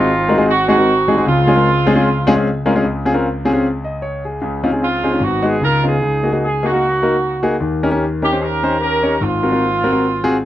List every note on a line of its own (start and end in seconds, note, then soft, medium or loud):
0.00 1.21 G#1 medium
0.00 1.21 G#2 medium
0.00 0.46 C4 medium
0.00 0.43 D#4 medium
0.00 0.47 F4 loud
0.29 0.35 G#3 medium
0.29 0.34 C4 medium
0.29 0.35 D#4 medium
0.29 0.34 F#4 medium
0.29 0.34 A#4 medium
0.38 0.49 G#3 medium
0.38 0.49 C4 medium
0.38 0.49 D#4 medium
0.38 0.49 F#4 medium
0.38 0.49 G#4 medium
0.47 0.68 C4 medium
0.47 0.68 D#4 medium
0.47 0.67 F#4 medium
0.68 0.74 G#3 medium
0.68 0.74 C4 medium
0.68 1.22 C4 medium
0.68 0.74 D#4 medium
0.68 1.22 D#4 medium
0.68 0.74 F#4 medium
0.68 1.22 F#4 loud
0.68 0.74 G#4 medium
0.78 0.89 G#3 medium
0.78 0.89 C4 medium
0.78 0.89 D#4 medium
0.78 0.89 F#4 medium
0.78 0.89 A#4 medium
1.08 1.13 G#3 medium
1.08 1.13 C4 medium
1.08 1.13 D#4 medium
1.08 1.13 F#4 medium
1.08 1.13 G#4 medium
1.17 1.26 G#3 medium
1.17 1.26 C4 medium
1.17 1.26 D#4 medium
1.17 1.26 F#4 medium
1.17 1.26 G#4 medium
1.26 2.80 C#2 medium
1.26 2.80 C#3 medium
1.26 2.40 G#3 medium
1.26 2.41 C4 medium
1.26 2.44 F4 medium
1.47 1.53 G#3 medium
1.47 1.53 C4 medium
1.47 1.53 C#4 medium
1.47 1.53 F4 medium
1.47 1.53 G#4 medium
1.55 1.67 G#3 medium
1.55 1.67 C4 medium
1.55 1.68 C#4 medium
1.55 1.67 F4 medium
1.55 1.67 A#4 medium
1.86 1.92 G#3 medium
1.86 1.92 C4 medium
1.86 1.92 C#4 medium
1.86 1.92 F4 medium
1.86 1.92 G#4 loud
1.95 2.07 G#3 medium
1.95 2.07 C4 medium
1.95 2.07 C#4 medium
1.95 2.07 F4 medium
1.95 2.07 G#4 medium
2.27 2.32 G#3 loud
2.27 2.32 C4 medium
2.27 2.32 C#4 medium
2.27 2.32 F4 medium
2.27 2.32 G#4 loud
2.36 2.47 G#3 medium
2.36 2.47 C4 medium
2.36 2.47 C#4 medium
2.36 2.47 F4 medium
2.36 2.47 G#4 medium
2.66 2.71 G#3 medium
2.66 2.71 C4 medium
2.66 2.71 C#4 medium
2.66 2.71 F4 medium
2.66 2.71 A#4 medium
2.75 2.84 G#3 medium
2.75 2.84 C4 medium
2.75 2.84 C#4 medium
2.75 2.84 F4 medium
2.75 2.84 G#4 medium
2.84 4.38 C#2 medium
2.84 4.39 C#3 medium
3.05 3.11 C4 medium
3.05 3.11 C#4 medium
3.05 3.11 F4 medium
3.05 3.11 G#4 medium
3.14 3.26 C4 medium
3.14 3.26 C#4 medium
3.14 3.26 F4 medium
3.14 3.26 A#4 medium
3.45 3.51 C4 medium
3.45 3.51 C#4 medium
3.45 3.51 F4 medium
3.45 3.51 G#4 medium
3.53 3.65 C4 medium
3.53 3.65 C#4 medium
3.53 3.65 F4 medium
3.53 3.65 G#4 medium
3.84 4.01 D#5 medium
4.02 4.23 C#5 medium
4.25 4.62 G#4 medium
4.42 5.17 C#2 medium
4.42 5.17 C#3 medium
4.64 4.69 C4 medium
4.64 4.69 C#4 medium
4.64 4.69 D#4 medium
4.64 4.69 F4 medium
4.72 4.84 C4 medium
4.72 4.84 C#4 medium
4.72 4.84 D#4 medium
4.72 4.85 G#4 medium
4.82 5.19 G#3 medium
4.82 5.19 C4 medium
4.82 5.19 F4 medium
5.04 5.09 C4 medium
5.04 5.09 C#4 medium
5.04 5.09 D#4 medium
5.04 5.09 G#4 medium
5.12 5.22 C4 medium
5.12 5.22 C#4 medium
5.12 5.22 D#4 medium
5.12 5.22 F4 medium
5.20 5.58 G#1 medium
5.20 5.58 G#2 medium
5.20 5.59 B3 medium
5.20 5.59 D#4 medium
5.20 5.44 F#4 medium
5.42 5.54 G#3 medium
5.42 5.54 B3 medium
5.42 5.54 D#4 medium
5.42 5.54 F#4 medium
5.42 5.62 G#4 medium
5.61 5.98 C#2 medium
5.61 5.98 C#3 medium
5.61 5.83 D#4 medium
5.61 5.99 F4 medium
5.61 5.84 A#4 loud
5.83 5.94 B3 medium
5.83 5.95 C#4 medium
5.83 5.95 D#4 medium
5.83 6.59 D#4 medium
5.83 5.95 F4 medium
5.83 6.38 G#4 loud
6.02 7.57 C#2 medium
6.02 7.57 C#3 medium
6.23 6.29 A#3 medium
6.23 6.29 D#4 medium
6.23 6.29 F#4 medium
6.23 6.29 G#4 medium
6.32 6.44 A#3 medium
6.32 6.44 D#4 medium
6.32 6.44 F#4 medium
6.32 6.44 G#4 medium
6.44 6.63 G#4 medium
6.63 6.69 A#3 medium
6.63 7.40 A#3 medium
6.63 6.69 D#4 medium
6.63 7.40 D#4 medium
6.63 6.69 F#4 medium
6.63 7.44 F#4 medium
6.63 6.69 G#4 medium
6.72 6.84 A#3 medium
6.72 6.84 D#4 medium
6.72 6.84 F#4 medium
6.72 6.84 A#4 medium
7.03 7.14 A#3 medium
7.03 7.14 D#4 medium
7.03 7.14 F#4 medium
7.03 7.14 A#4 medium
7.43 7.54 A#3 medium
7.43 7.54 D#4 medium
7.43 7.54 F#4 medium
7.43 7.54 G#4 medium
7.60 9.17 D#2 medium
7.60 9.17 D#3 medium
7.83 7.89 C#4 medium
7.83 7.89 D#4 medium
7.83 7.89 G4 medium
7.83 7.89 A#4 medium
7.91 8.03 C#4 medium
7.91 8.03 D#4 medium
7.91 8.03 G4 medium
7.91 8.04 A#4 medium
8.22 8.28 C#4 medium
8.22 8.28 D#4 medium
8.22 8.28 G4 medium
8.22 8.40 G4 medium
8.22 8.28 A#4 medium
8.32 8.44 C#4 medium
8.32 8.44 D#4 medium
8.32 8.44 G4 medium
8.32 8.44 C5 medium
8.41 8.80 C#4 medium
8.41 8.80 G4 medium
8.41 8.80 A#4 medium
8.63 8.74 C#4 medium
8.63 8.74 D#4 medium
8.63 8.74 G4 medium
8.63 8.75 C5 medium
8.81 9.18 C#4 medium
8.81 9.18 G4 medium
8.81 9.18 A#4 medium
9.03 9.14 C#4 medium
9.03 9.15 D#4 medium
9.03 9.14 G4 medium
9.03 9.14 C#5 medium
9.21 10.45 G#1 medium
9.21 10.45 G#2 medium
9.21 10.38 A#3 medium
9.21 10.38 C4 medium
9.21 10.42 F4 medium
9.43 9.49 C4 medium
9.43 9.49 F4 medium
9.43 9.49 F#4 medium
9.43 9.49 A#4 medium
9.52 9.64 C4 medium
9.52 9.64 F4 medium
9.52 9.64 F#4 medium
9.52 9.64 A#4 medium
9.84 9.89 C4 medium
9.84 9.89 F4 medium
9.84 9.89 F#4 medium
9.84 9.89 A#4 medium
9.92 10.04 C4 medium
9.92 10.04 F4 medium
9.92 10.04 F#4 medium
9.92 10.04 A#4 medium
10.24 10.35 C4 medium
10.24 10.35 F4 medium
10.24 10.35 F#4 medium
10.24 10.35 G#4 loud